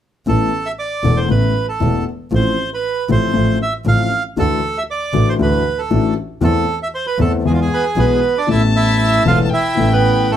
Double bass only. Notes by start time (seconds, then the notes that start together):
0.27 A1
1.04 E1
1.30 A1
1.82 E1
2.32 A1
3.10 A1
3.35 A1
3.86 A1
4.38 D2
5.14 A1
5.39 D2
5.91 A1
6.42 E2
7.18 E2
7.45 E2
7.96 B1
8.49 A1
9.26 E1
9.77 A1
10.28 G1